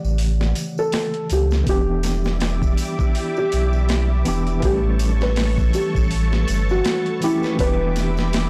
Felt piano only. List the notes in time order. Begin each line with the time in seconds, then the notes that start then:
Already playing: D5
0.79 A4
1.33 G4
1.69 G4
3.38 G4
4.65 G4
5.23 B4
5.75 G4
6.71 F#4
7.24 E4
7.60 B4